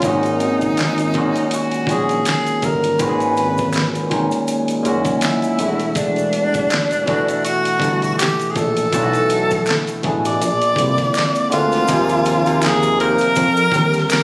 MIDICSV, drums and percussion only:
0, 0, Header, 1, 2, 480
1, 0, Start_track
1, 0, Tempo, 740741
1, 25, Time_signature, 4, 2, 24, 8
1, 9221, End_track
2, 0, Start_track
2, 0, Title_t, "Drums"
2, 12, Note_on_c, 9, 42, 81
2, 19, Note_on_c, 9, 36, 88
2, 26, Note_on_c, 9, 82, 67
2, 76, Note_off_c, 9, 42, 0
2, 83, Note_off_c, 9, 36, 0
2, 91, Note_off_c, 9, 82, 0
2, 149, Note_on_c, 9, 42, 32
2, 165, Note_on_c, 9, 82, 40
2, 214, Note_off_c, 9, 42, 0
2, 230, Note_off_c, 9, 82, 0
2, 261, Note_on_c, 9, 42, 60
2, 261, Note_on_c, 9, 82, 43
2, 326, Note_off_c, 9, 42, 0
2, 326, Note_off_c, 9, 82, 0
2, 397, Note_on_c, 9, 42, 36
2, 397, Note_on_c, 9, 82, 43
2, 403, Note_on_c, 9, 36, 80
2, 462, Note_off_c, 9, 42, 0
2, 462, Note_off_c, 9, 82, 0
2, 468, Note_off_c, 9, 36, 0
2, 501, Note_on_c, 9, 42, 77
2, 504, Note_on_c, 9, 26, 52
2, 504, Note_on_c, 9, 82, 53
2, 518, Note_on_c, 9, 39, 84
2, 524, Note_on_c, 9, 38, 93
2, 566, Note_off_c, 9, 42, 0
2, 569, Note_off_c, 9, 26, 0
2, 569, Note_off_c, 9, 82, 0
2, 583, Note_off_c, 9, 39, 0
2, 588, Note_off_c, 9, 38, 0
2, 633, Note_on_c, 9, 42, 45
2, 642, Note_on_c, 9, 82, 45
2, 698, Note_off_c, 9, 42, 0
2, 707, Note_off_c, 9, 82, 0
2, 738, Note_on_c, 9, 42, 59
2, 746, Note_on_c, 9, 36, 92
2, 803, Note_off_c, 9, 42, 0
2, 810, Note_off_c, 9, 36, 0
2, 879, Note_on_c, 9, 42, 50
2, 884, Note_on_c, 9, 82, 44
2, 943, Note_off_c, 9, 42, 0
2, 948, Note_off_c, 9, 82, 0
2, 978, Note_on_c, 9, 42, 74
2, 994, Note_on_c, 9, 82, 61
2, 1043, Note_off_c, 9, 42, 0
2, 1059, Note_off_c, 9, 82, 0
2, 1111, Note_on_c, 9, 42, 47
2, 1127, Note_on_c, 9, 82, 43
2, 1176, Note_off_c, 9, 42, 0
2, 1192, Note_off_c, 9, 82, 0
2, 1211, Note_on_c, 9, 36, 88
2, 1224, Note_on_c, 9, 42, 61
2, 1235, Note_on_c, 9, 82, 43
2, 1275, Note_off_c, 9, 36, 0
2, 1289, Note_off_c, 9, 42, 0
2, 1299, Note_off_c, 9, 82, 0
2, 1356, Note_on_c, 9, 42, 43
2, 1365, Note_on_c, 9, 82, 42
2, 1420, Note_off_c, 9, 42, 0
2, 1430, Note_off_c, 9, 82, 0
2, 1460, Note_on_c, 9, 42, 77
2, 1466, Note_on_c, 9, 26, 73
2, 1466, Note_on_c, 9, 82, 70
2, 1478, Note_on_c, 9, 39, 71
2, 1483, Note_on_c, 9, 38, 91
2, 1525, Note_off_c, 9, 42, 0
2, 1531, Note_off_c, 9, 26, 0
2, 1531, Note_off_c, 9, 82, 0
2, 1543, Note_off_c, 9, 39, 0
2, 1548, Note_off_c, 9, 38, 0
2, 1598, Note_on_c, 9, 42, 34
2, 1600, Note_on_c, 9, 82, 45
2, 1662, Note_off_c, 9, 42, 0
2, 1664, Note_off_c, 9, 82, 0
2, 1700, Note_on_c, 9, 42, 67
2, 1703, Note_on_c, 9, 36, 87
2, 1707, Note_on_c, 9, 82, 43
2, 1765, Note_off_c, 9, 42, 0
2, 1768, Note_off_c, 9, 36, 0
2, 1772, Note_off_c, 9, 82, 0
2, 1838, Note_on_c, 9, 82, 36
2, 1839, Note_on_c, 9, 42, 43
2, 1903, Note_off_c, 9, 42, 0
2, 1903, Note_off_c, 9, 82, 0
2, 1939, Note_on_c, 9, 82, 63
2, 1940, Note_on_c, 9, 42, 79
2, 1943, Note_on_c, 9, 36, 91
2, 2004, Note_off_c, 9, 82, 0
2, 2005, Note_off_c, 9, 42, 0
2, 2007, Note_off_c, 9, 36, 0
2, 2076, Note_on_c, 9, 42, 36
2, 2081, Note_on_c, 9, 82, 41
2, 2141, Note_off_c, 9, 42, 0
2, 2146, Note_off_c, 9, 82, 0
2, 2183, Note_on_c, 9, 82, 44
2, 2187, Note_on_c, 9, 42, 57
2, 2248, Note_off_c, 9, 82, 0
2, 2252, Note_off_c, 9, 42, 0
2, 2318, Note_on_c, 9, 82, 43
2, 2325, Note_on_c, 9, 42, 34
2, 2326, Note_on_c, 9, 36, 82
2, 2382, Note_off_c, 9, 82, 0
2, 2389, Note_off_c, 9, 42, 0
2, 2391, Note_off_c, 9, 36, 0
2, 2415, Note_on_c, 9, 26, 58
2, 2415, Note_on_c, 9, 82, 58
2, 2424, Note_on_c, 9, 42, 76
2, 2442, Note_on_c, 9, 39, 85
2, 2447, Note_on_c, 9, 38, 102
2, 2479, Note_off_c, 9, 26, 0
2, 2479, Note_off_c, 9, 82, 0
2, 2489, Note_off_c, 9, 42, 0
2, 2507, Note_off_c, 9, 39, 0
2, 2512, Note_off_c, 9, 38, 0
2, 2562, Note_on_c, 9, 42, 46
2, 2562, Note_on_c, 9, 82, 42
2, 2626, Note_off_c, 9, 82, 0
2, 2627, Note_off_c, 9, 42, 0
2, 2663, Note_on_c, 9, 42, 57
2, 2667, Note_on_c, 9, 36, 101
2, 2728, Note_off_c, 9, 42, 0
2, 2732, Note_off_c, 9, 36, 0
2, 2794, Note_on_c, 9, 82, 44
2, 2801, Note_on_c, 9, 42, 55
2, 2859, Note_off_c, 9, 82, 0
2, 2866, Note_off_c, 9, 42, 0
2, 2901, Note_on_c, 9, 82, 64
2, 2903, Note_on_c, 9, 42, 67
2, 2966, Note_off_c, 9, 82, 0
2, 2968, Note_off_c, 9, 42, 0
2, 3033, Note_on_c, 9, 42, 46
2, 3043, Note_on_c, 9, 82, 44
2, 3098, Note_off_c, 9, 42, 0
2, 3108, Note_off_c, 9, 82, 0
2, 3143, Note_on_c, 9, 42, 63
2, 3146, Note_on_c, 9, 82, 44
2, 3208, Note_off_c, 9, 42, 0
2, 3211, Note_off_c, 9, 82, 0
2, 3270, Note_on_c, 9, 42, 44
2, 3273, Note_on_c, 9, 36, 92
2, 3277, Note_on_c, 9, 82, 46
2, 3335, Note_off_c, 9, 42, 0
2, 3338, Note_off_c, 9, 36, 0
2, 3342, Note_off_c, 9, 82, 0
2, 3377, Note_on_c, 9, 42, 78
2, 3384, Note_on_c, 9, 26, 70
2, 3384, Note_on_c, 9, 82, 71
2, 3394, Note_on_c, 9, 39, 73
2, 3400, Note_on_c, 9, 38, 97
2, 3442, Note_off_c, 9, 42, 0
2, 3449, Note_off_c, 9, 26, 0
2, 3449, Note_off_c, 9, 82, 0
2, 3459, Note_off_c, 9, 39, 0
2, 3465, Note_off_c, 9, 38, 0
2, 3514, Note_on_c, 9, 42, 36
2, 3523, Note_on_c, 9, 82, 50
2, 3579, Note_off_c, 9, 42, 0
2, 3587, Note_off_c, 9, 82, 0
2, 3620, Note_on_c, 9, 42, 72
2, 3628, Note_on_c, 9, 82, 46
2, 3685, Note_off_c, 9, 42, 0
2, 3693, Note_off_c, 9, 82, 0
2, 3756, Note_on_c, 9, 42, 50
2, 3761, Note_on_c, 9, 82, 36
2, 3820, Note_off_c, 9, 42, 0
2, 3826, Note_off_c, 9, 82, 0
2, 3857, Note_on_c, 9, 42, 75
2, 3860, Note_on_c, 9, 36, 96
2, 3865, Note_on_c, 9, 82, 68
2, 3921, Note_off_c, 9, 42, 0
2, 3925, Note_off_c, 9, 36, 0
2, 3930, Note_off_c, 9, 82, 0
2, 3993, Note_on_c, 9, 42, 32
2, 4005, Note_on_c, 9, 82, 38
2, 4058, Note_off_c, 9, 42, 0
2, 4070, Note_off_c, 9, 82, 0
2, 4100, Note_on_c, 9, 42, 68
2, 4108, Note_on_c, 9, 82, 42
2, 4165, Note_off_c, 9, 42, 0
2, 4173, Note_off_c, 9, 82, 0
2, 4238, Note_on_c, 9, 42, 36
2, 4240, Note_on_c, 9, 82, 44
2, 4244, Note_on_c, 9, 36, 79
2, 4303, Note_off_c, 9, 42, 0
2, 4305, Note_off_c, 9, 82, 0
2, 4308, Note_off_c, 9, 36, 0
2, 4344, Note_on_c, 9, 26, 58
2, 4344, Note_on_c, 9, 42, 77
2, 4344, Note_on_c, 9, 82, 57
2, 4361, Note_on_c, 9, 39, 81
2, 4366, Note_on_c, 9, 38, 101
2, 4408, Note_off_c, 9, 42, 0
2, 4409, Note_off_c, 9, 26, 0
2, 4409, Note_off_c, 9, 82, 0
2, 4426, Note_off_c, 9, 39, 0
2, 4431, Note_off_c, 9, 38, 0
2, 4477, Note_on_c, 9, 42, 47
2, 4486, Note_on_c, 9, 82, 47
2, 4542, Note_off_c, 9, 42, 0
2, 4551, Note_off_c, 9, 82, 0
2, 4584, Note_on_c, 9, 42, 62
2, 4587, Note_on_c, 9, 36, 101
2, 4649, Note_off_c, 9, 42, 0
2, 4651, Note_off_c, 9, 36, 0
2, 4720, Note_on_c, 9, 42, 51
2, 4728, Note_on_c, 9, 82, 43
2, 4785, Note_off_c, 9, 42, 0
2, 4792, Note_off_c, 9, 82, 0
2, 4825, Note_on_c, 9, 42, 75
2, 4831, Note_on_c, 9, 82, 63
2, 4890, Note_off_c, 9, 42, 0
2, 4896, Note_off_c, 9, 82, 0
2, 4959, Note_on_c, 9, 42, 48
2, 4970, Note_on_c, 9, 82, 42
2, 5024, Note_off_c, 9, 42, 0
2, 5035, Note_off_c, 9, 82, 0
2, 5052, Note_on_c, 9, 36, 94
2, 5065, Note_on_c, 9, 42, 64
2, 5077, Note_on_c, 9, 82, 43
2, 5117, Note_off_c, 9, 36, 0
2, 5130, Note_off_c, 9, 42, 0
2, 5142, Note_off_c, 9, 82, 0
2, 5198, Note_on_c, 9, 42, 41
2, 5208, Note_on_c, 9, 82, 44
2, 5263, Note_off_c, 9, 42, 0
2, 5273, Note_off_c, 9, 82, 0
2, 5309, Note_on_c, 9, 26, 71
2, 5309, Note_on_c, 9, 42, 81
2, 5309, Note_on_c, 9, 82, 76
2, 5326, Note_on_c, 9, 39, 81
2, 5332, Note_on_c, 9, 38, 93
2, 5373, Note_off_c, 9, 26, 0
2, 5373, Note_off_c, 9, 82, 0
2, 5374, Note_off_c, 9, 42, 0
2, 5391, Note_off_c, 9, 39, 0
2, 5397, Note_off_c, 9, 38, 0
2, 5441, Note_on_c, 9, 42, 37
2, 5449, Note_on_c, 9, 82, 50
2, 5505, Note_off_c, 9, 42, 0
2, 5514, Note_off_c, 9, 82, 0
2, 5544, Note_on_c, 9, 42, 67
2, 5545, Note_on_c, 9, 36, 86
2, 5557, Note_on_c, 9, 82, 45
2, 5609, Note_off_c, 9, 42, 0
2, 5610, Note_off_c, 9, 36, 0
2, 5621, Note_off_c, 9, 82, 0
2, 5680, Note_on_c, 9, 42, 49
2, 5688, Note_on_c, 9, 82, 37
2, 5745, Note_off_c, 9, 42, 0
2, 5752, Note_off_c, 9, 82, 0
2, 5784, Note_on_c, 9, 36, 92
2, 5784, Note_on_c, 9, 42, 91
2, 5792, Note_on_c, 9, 82, 68
2, 5848, Note_off_c, 9, 36, 0
2, 5848, Note_off_c, 9, 42, 0
2, 5857, Note_off_c, 9, 82, 0
2, 5919, Note_on_c, 9, 42, 34
2, 5926, Note_on_c, 9, 82, 43
2, 5984, Note_off_c, 9, 42, 0
2, 5991, Note_off_c, 9, 82, 0
2, 6025, Note_on_c, 9, 42, 65
2, 6025, Note_on_c, 9, 82, 48
2, 6090, Note_off_c, 9, 42, 0
2, 6090, Note_off_c, 9, 82, 0
2, 6160, Note_on_c, 9, 82, 49
2, 6164, Note_on_c, 9, 42, 36
2, 6166, Note_on_c, 9, 36, 81
2, 6225, Note_off_c, 9, 82, 0
2, 6229, Note_off_c, 9, 42, 0
2, 6231, Note_off_c, 9, 36, 0
2, 6259, Note_on_c, 9, 26, 60
2, 6259, Note_on_c, 9, 82, 57
2, 6268, Note_on_c, 9, 42, 73
2, 6285, Note_on_c, 9, 39, 86
2, 6291, Note_on_c, 9, 38, 109
2, 6324, Note_off_c, 9, 26, 0
2, 6324, Note_off_c, 9, 82, 0
2, 6333, Note_off_c, 9, 42, 0
2, 6350, Note_off_c, 9, 39, 0
2, 6355, Note_off_c, 9, 38, 0
2, 6398, Note_on_c, 9, 42, 45
2, 6403, Note_on_c, 9, 82, 48
2, 6463, Note_off_c, 9, 42, 0
2, 6468, Note_off_c, 9, 82, 0
2, 6501, Note_on_c, 9, 42, 57
2, 6507, Note_on_c, 9, 36, 103
2, 6566, Note_off_c, 9, 42, 0
2, 6572, Note_off_c, 9, 36, 0
2, 6642, Note_on_c, 9, 82, 47
2, 6644, Note_on_c, 9, 42, 49
2, 6707, Note_off_c, 9, 82, 0
2, 6708, Note_off_c, 9, 42, 0
2, 6749, Note_on_c, 9, 42, 75
2, 6752, Note_on_c, 9, 82, 66
2, 6814, Note_off_c, 9, 42, 0
2, 6817, Note_off_c, 9, 82, 0
2, 6879, Note_on_c, 9, 42, 51
2, 6886, Note_on_c, 9, 82, 42
2, 6944, Note_off_c, 9, 42, 0
2, 6950, Note_off_c, 9, 82, 0
2, 6972, Note_on_c, 9, 36, 93
2, 6987, Note_on_c, 9, 82, 43
2, 6988, Note_on_c, 9, 42, 65
2, 7037, Note_off_c, 9, 36, 0
2, 7051, Note_off_c, 9, 82, 0
2, 7053, Note_off_c, 9, 42, 0
2, 7115, Note_on_c, 9, 82, 48
2, 7116, Note_on_c, 9, 36, 93
2, 7119, Note_on_c, 9, 42, 45
2, 7144, Note_on_c, 9, 38, 37
2, 7180, Note_off_c, 9, 82, 0
2, 7181, Note_off_c, 9, 36, 0
2, 7184, Note_off_c, 9, 42, 0
2, 7208, Note_off_c, 9, 38, 0
2, 7219, Note_on_c, 9, 26, 77
2, 7219, Note_on_c, 9, 82, 66
2, 7227, Note_on_c, 9, 42, 80
2, 7245, Note_on_c, 9, 39, 87
2, 7250, Note_on_c, 9, 38, 97
2, 7284, Note_off_c, 9, 26, 0
2, 7284, Note_off_c, 9, 82, 0
2, 7292, Note_off_c, 9, 42, 0
2, 7310, Note_off_c, 9, 39, 0
2, 7315, Note_off_c, 9, 38, 0
2, 7356, Note_on_c, 9, 82, 51
2, 7361, Note_on_c, 9, 42, 38
2, 7421, Note_off_c, 9, 82, 0
2, 7425, Note_off_c, 9, 42, 0
2, 7463, Note_on_c, 9, 82, 45
2, 7465, Note_on_c, 9, 42, 73
2, 7528, Note_off_c, 9, 82, 0
2, 7530, Note_off_c, 9, 42, 0
2, 7595, Note_on_c, 9, 82, 38
2, 7600, Note_on_c, 9, 42, 50
2, 7611, Note_on_c, 9, 38, 35
2, 7659, Note_off_c, 9, 82, 0
2, 7665, Note_off_c, 9, 42, 0
2, 7676, Note_off_c, 9, 38, 0
2, 7696, Note_on_c, 9, 82, 83
2, 7702, Note_on_c, 9, 36, 106
2, 7706, Note_on_c, 9, 42, 93
2, 7761, Note_off_c, 9, 82, 0
2, 7767, Note_off_c, 9, 36, 0
2, 7771, Note_off_c, 9, 42, 0
2, 7834, Note_on_c, 9, 82, 44
2, 7838, Note_on_c, 9, 42, 35
2, 7899, Note_off_c, 9, 82, 0
2, 7903, Note_off_c, 9, 42, 0
2, 7939, Note_on_c, 9, 82, 51
2, 7944, Note_on_c, 9, 42, 66
2, 8004, Note_off_c, 9, 82, 0
2, 8008, Note_off_c, 9, 42, 0
2, 8073, Note_on_c, 9, 82, 52
2, 8082, Note_on_c, 9, 42, 42
2, 8138, Note_off_c, 9, 82, 0
2, 8147, Note_off_c, 9, 42, 0
2, 8175, Note_on_c, 9, 26, 64
2, 8175, Note_on_c, 9, 82, 66
2, 8183, Note_on_c, 9, 42, 87
2, 8200, Note_on_c, 9, 39, 91
2, 8206, Note_on_c, 9, 38, 118
2, 8240, Note_off_c, 9, 26, 0
2, 8240, Note_off_c, 9, 82, 0
2, 8248, Note_off_c, 9, 42, 0
2, 8265, Note_off_c, 9, 39, 0
2, 8270, Note_off_c, 9, 38, 0
2, 8311, Note_on_c, 9, 82, 54
2, 8316, Note_on_c, 9, 42, 37
2, 8376, Note_off_c, 9, 82, 0
2, 8381, Note_off_c, 9, 42, 0
2, 8425, Note_on_c, 9, 42, 67
2, 8490, Note_off_c, 9, 42, 0
2, 8543, Note_on_c, 9, 82, 52
2, 8561, Note_on_c, 9, 42, 53
2, 8608, Note_off_c, 9, 82, 0
2, 8626, Note_off_c, 9, 42, 0
2, 8654, Note_on_c, 9, 82, 66
2, 8660, Note_on_c, 9, 36, 98
2, 8661, Note_on_c, 9, 42, 87
2, 8719, Note_off_c, 9, 82, 0
2, 8724, Note_off_c, 9, 36, 0
2, 8726, Note_off_c, 9, 42, 0
2, 8790, Note_on_c, 9, 82, 49
2, 8794, Note_on_c, 9, 42, 34
2, 8855, Note_off_c, 9, 82, 0
2, 8859, Note_off_c, 9, 42, 0
2, 8888, Note_on_c, 9, 36, 103
2, 8902, Note_on_c, 9, 42, 72
2, 8903, Note_on_c, 9, 82, 48
2, 8953, Note_off_c, 9, 36, 0
2, 8967, Note_off_c, 9, 42, 0
2, 8968, Note_off_c, 9, 82, 0
2, 9029, Note_on_c, 9, 82, 54
2, 9035, Note_on_c, 9, 42, 46
2, 9059, Note_on_c, 9, 38, 41
2, 9094, Note_off_c, 9, 82, 0
2, 9099, Note_off_c, 9, 42, 0
2, 9124, Note_off_c, 9, 38, 0
2, 9135, Note_on_c, 9, 26, 76
2, 9135, Note_on_c, 9, 82, 83
2, 9136, Note_on_c, 9, 42, 91
2, 9153, Note_on_c, 9, 39, 81
2, 9159, Note_on_c, 9, 38, 111
2, 9200, Note_off_c, 9, 26, 0
2, 9200, Note_off_c, 9, 82, 0
2, 9201, Note_off_c, 9, 42, 0
2, 9218, Note_off_c, 9, 39, 0
2, 9221, Note_off_c, 9, 38, 0
2, 9221, End_track
0, 0, End_of_file